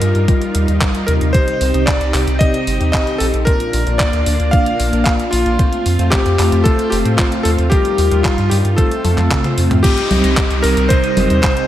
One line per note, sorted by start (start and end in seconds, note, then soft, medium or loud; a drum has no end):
0.00 0.13 G2 medium
0.00 1.32 G3 medium
0.00 0.25 G3 medium
0.00 3.43 D#4 medium
0.00 0.25 D#4 medium
0.00 1.30 F4 medium
0.00 0.25 F4 medium
0.00 0.77 A#4 medium
0.00 0.25 A#4 medium
0.00 closed hi-hat medium
0.15 0.26 G2 medium
0.15 closed hi-hat soft
0.28 0.65 G3 loud
0.28 0.65 D#4 medium
0.28 0.65 F4 medium
0.28 0.65 A#4 loud
0.28 kick loud
0.28 closed hi-hat medium
0.42 closed hi-hat soft
0.55 0.66 D#2 medium
0.55 closed hi-hat medium
0.68 0.79 D#2 medium
0.68 1.05 G3 medium
0.68 1.05 D#4 medium
0.68 1.05 F4 medium
0.68 1.05 A#4 loud
0.68 closed hi-hat soft
0.81 kick loud
0.81 clap loud
0.81 closed hi-hat medium
0.95 closed hi-hat soft
1.06 1.19 D#2 medium
1.06 1.31 C3 medium
1.06 1.31 G3 medium
1.06 1.31 D#4 medium
1.06 1.31 F4 medium
1.06 1.13 A#4 medium
1.06 1.31 A#4 medium
1.06 closed hi-hat medium
1.21 1.32 D#2 medium
1.21 closed hi-hat soft
1.33 1.71 C3 medium
1.33 1.71 C4 medium
1.33 3.45 C4 medium
1.33 1.71 D#4 medium
1.33 1.71 G4 medium
1.33 3.45 G4 medium
1.33 1.88 C5 loud
1.33 1.71 D#5 loud
1.33 kick loud
1.33 closed hi-hat medium
1.48 closed hi-hat soft
1.61 1.72 C2 medium
1.61 open hi-hat loud
1.74 1.85 C2 medium
1.74 1.91 C3 medium
1.74 1.91 C4 medium
1.74 1.92 D#4 medium
1.74 1.91 G4 medium
1.74 1.91 D#5 loud
1.74 closed hi-hat soft
1.86 2.36 D5 medium
1.86 kick loud
1.86 clap loud
1.86 closed hi-hat medium
2.01 2.12 C2 medium
2.01 closed hi-hat soft
2.14 2.25 C2 loud
2.14 2.37 C3 medium
2.14 2.37 C4 medium
2.14 2.37 D#4 medium
2.14 2.37 G4 medium
2.14 2.37 D#5 medium
2.14 clap medium
2.14 open hi-hat loud
2.27 2.38 C2 medium
2.27 closed hi-hat soft
2.39 2.77 C3 medium
2.39 2.77 C4 medium
2.39 2.77 D#4 medium
2.39 2.77 G4 medium
2.39 2.89 D#5 loud
2.39 2.77 D#5 loud
2.39 kick loud
2.39 closed hi-hat medium
2.54 closed hi-hat soft
2.67 2.78 G1 medium
2.67 open hi-hat loud
2.80 2.92 D#2 medium
2.80 3.17 C3 medium
2.80 3.17 C4 medium
2.80 3.17 D#4 medium
2.80 3.17 G4 medium
2.80 3.17 D#5 loud
2.80 closed hi-hat soft
2.92 3.20 D#5 loud
2.92 kick loud
2.92 clap loud
2.92 closed hi-hat medium
3.07 closed hi-hat soft
3.18 3.31 A#1 medium
3.18 3.44 C4 medium
3.18 3.44 D#4 medium
3.18 3.44 G4 medium
3.18 3.25 A4 medium
3.18 3.44 D#5 loud
3.18 open hi-hat loud
3.34 3.45 A#1 medium
3.34 closed hi-hat soft
3.45 3.83 A#2 medium
3.45 3.83 A#3 medium
3.45 5.57 A#3 medium
3.45 3.83 D4 medium
3.45 5.57 D4 medium
3.45 3.83 F4 medium
3.45 9.80 F4 medium
3.45 4.01 A#4 loud
3.45 3.83 D5 loud
3.45 kick loud
3.45 closed hi-hat medium
3.60 closed hi-hat soft
3.73 3.84 A#1 medium
3.73 open hi-hat loud
3.87 3.98 A#1 medium
3.87 4.04 A#2 medium
3.87 4.04 A#3 medium
3.87 4.04 D4 medium
3.87 4.04 F4 medium
3.87 4.04 D5 loud
3.87 closed hi-hat soft
3.98 4.48 D5 loud
3.98 kick loud
3.98 clap loud
3.98 closed hi-hat medium
4.13 4.24 D2 medium
4.13 closed hi-hat soft
4.26 4.38 D2 medium
4.26 4.50 A#2 medium
4.26 4.50 A#3 medium
4.26 4.50 D4 medium
4.26 4.50 F4 medium
4.26 4.50 D5 medium
4.26 open hi-hat loud
4.40 4.51 D2 medium
4.40 closed hi-hat soft
4.51 4.90 A#2 medium
4.51 4.90 A#3 medium
4.51 4.90 D4 medium
4.51 4.90 F4 medium
4.51 4.90 D5 loud
4.51 5.03 F5 loud
4.51 kick loud
4.51 closed hi-hat medium
4.66 closed hi-hat soft
4.80 4.91 A#1 medium
4.80 open hi-hat loud
4.93 5.04 A#1 medium
4.93 5.29 A#2 medium
4.93 5.29 A#3 medium
4.93 5.29 D4 medium
4.93 5.29 F4 medium
4.93 5.29 D5 loud
4.93 closed hi-hat soft
5.04 5.10 F5 loud
5.04 kick loud
5.04 clap loud
5.04 closed hi-hat medium
5.20 closed hi-hat soft
5.31 5.44 A#1 medium
5.31 5.56 A#3 medium
5.31 5.56 D4 medium
5.31 6.07 F4 loud
5.31 5.56 F4 medium
5.31 5.56 D5 loud
5.31 open hi-hat loud
5.46 5.57 A#1 medium
5.46 closed hi-hat soft
5.59 5.96 A3 medium
5.59 7.70 A3 medium
5.59 5.96 C4 medium
5.59 7.70 C4 medium
5.59 5.96 F4 medium
5.59 5.96 C5 loud
5.59 kick loud
5.59 closed hi-hat medium
5.73 closed hi-hat soft
5.86 5.97 F2 medium
5.86 open hi-hat loud
5.99 6.10 F2 medium
5.99 6.16 A3 medium
5.99 6.16 C4 medium
5.99 6.16 F4 medium
5.99 6.16 C5 loud
5.99 closed hi-hat soft
6.10 6.61 G4 medium
6.10 kick loud
6.10 clap loud
6.10 closed hi-hat medium
6.25 6.37 F2 medium
6.25 closed hi-hat soft
6.39 6.50 F2 loud
6.39 6.62 A3 medium
6.39 6.62 C4 medium
6.39 6.62 F4 medium
6.39 6.62 C5 medium
6.39 clap medium
6.39 open hi-hat loud
6.52 6.63 F2 medium
6.52 closed hi-hat soft
6.64 7.02 A3 medium
6.64 7.02 C4 medium
6.64 7.02 F4 medium
6.64 6.92 A4 medium
6.64 7.02 C5 loud
6.64 kick loud
6.64 closed hi-hat medium
6.79 closed hi-hat soft
6.90 7.03 F1 loud
6.90 6.96 G4 medium
6.90 open hi-hat loud
7.05 7.16 A2 medium
7.05 7.42 A3 medium
7.05 7.42 C4 medium
7.05 7.42 F4 medium
7.05 7.42 C5 loud
7.05 closed hi-hat soft
7.17 7.23 F4 medium
7.17 kick loud
7.17 clap loud
7.17 closed hi-hat medium
7.32 closed hi-hat soft
7.43 7.56 D#2 medium
7.43 7.68 A3 medium
7.43 7.68 C4 medium
7.43 7.68 F4 medium
7.43 7.49 A4 medium
7.43 7.68 C5 loud
7.43 open hi-hat loud
7.58 7.69 D#2 medium
7.58 closed hi-hat soft
7.70 8.08 G3 medium
7.70 8.77 G3 medium
7.70 8.08 D#4 medium
7.70 8.77 D#4 medium
7.70 8.08 F4 medium
7.70 8.25 G4 medium
7.70 8.08 A#4 loud
7.70 kick loud
7.70 closed hi-hat medium
7.85 closed hi-hat soft
7.98 8.09 D#2 medium
7.98 open hi-hat loud
8.11 8.23 D#2 medium
8.11 8.29 G3 medium
8.11 8.29 D#4 medium
8.11 8.29 F4 medium
8.11 8.29 A#4 loud
8.11 closed hi-hat soft
8.23 8.49 F4 medium
8.23 kick loud
8.23 clap loud
8.23 closed hi-hat medium
8.38 8.49 G2 medium
8.38 closed hi-hat soft
8.50 8.62 G2 loud
8.50 8.75 G3 medium
8.50 8.75 D#4 medium
8.50 8.75 F4 medium
8.50 8.56 G4 medium
8.50 8.75 A#4 medium
8.50 open hi-hat loud
8.64 8.76 G2 medium
8.64 closed hi-hat soft
8.76 9.02 A3 medium
8.76 9.83 A3 medium
8.76 9.02 C4 medium
8.76 9.83 C4 medium
8.76 9.02 F4 medium
8.76 9.53 A4 medium
8.76 9.02 C5 loud
8.76 kick loud
8.76 closed hi-hat medium
8.91 closed hi-hat soft
9.04 9.15 F2 medium
9.04 9.41 A3 medium
9.04 9.41 C4 medium
9.04 9.41 F4 medium
9.04 9.41 A4 loud
9.04 open hi-hat loud
9.04 high tom medium
9.18 9.29 F2 medium
9.18 clap soft
9.18 closed hi-hat soft
9.18 high tom medium
9.31 kick loud
9.31 clap loud
9.31 closed hi-hat medium
9.31 mid tom medium
9.44 9.54 A3 loud
9.44 9.54 C4 medium
9.44 9.54 F4 medium
9.44 9.54 C5 loud
9.44 closed hi-hat soft
9.44 mid tom medium
9.57 9.69 F2 medium
9.57 9.81 A3 medium
9.57 9.81 C4 medium
9.57 9.81 F4 medium
9.57 9.81 C5 medium
9.57 open hi-hat loud
9.71 9.82 F2 medium
9.71 closed hi-hat soft
9.71 mid tom medium
9.83 10.21 C3 medium
9.83 11.67 G3 medium
9.83 10.21 C4 medium
9.83 11.67 C4 medium
9.83 10.21 D#4 medium
9.83 11.67 D#4 medium
9.83 10.65 G4 medium
9.83 10.21 G4 medium
9.83 10.21 D#5 loud
9.83 kick loud
9.83 closed hi-hat loud
9.83 crash loud
9.83 downlifter medium
9.97 closed hi-hat soft
10.11 10.22 C2 medium
10.11 open hi-hat loud
10.11 high conga medium
10.24 10.35 C2 medium
10.24 10.41 C3 medium
10.24 10.41 C4 medium
10.24 10.41 D#4 medium
10.24 10.41 G4 medium
10.24 10.41 D#5 loud
10.24 closed hi-hat soft
10.37 kick loud
10.37 clap loud
10.37 closed hi-hat loud
10.51 10.62 C2 medium
10.51 closed hi-hat soft
10.62 10.75 C2 loud
10.62 10.87 C3 medium
10.62 10.87 C4 medium
10.62 10.87 D#4 medium
10.62 10.87 G4 medium
10.62 10.90 A#4 loud
10.62 10.87 D#5 medium
10.62 open hi-hat loud
10.77 10.88 C2 medium
10.77 closed hi-hat soft
10.89 11.27 C3 medium
10.89 11.27 C4 medium
10.89 11.27 D#4 medium
10.89 11.27 G4 medium
10.89 11.40 C5 loud
10.89 11.27 D#5 loud
10.89 kick loud
10.89 closed hi-hat loud
11.04 closed hi-hat soft
11.17 11.28 G1 loud
11.17 open hi-hat loud
11.17 high conga medium
11.30 11.41 D#2 medium
11.30 11.67 C3 medium
11.30 11.67 C4 medium
11.30 11.67 D#4 medium
11.30 11.67 G4 medium
11.30 11.67 D#5 loud
11.30 closed hi-hat soft
11.42 11.67 C5 loud
11.42 kick loud
11.42 clap loud
11.42 closed hi-hat loud
11.57 closed hi-hat soft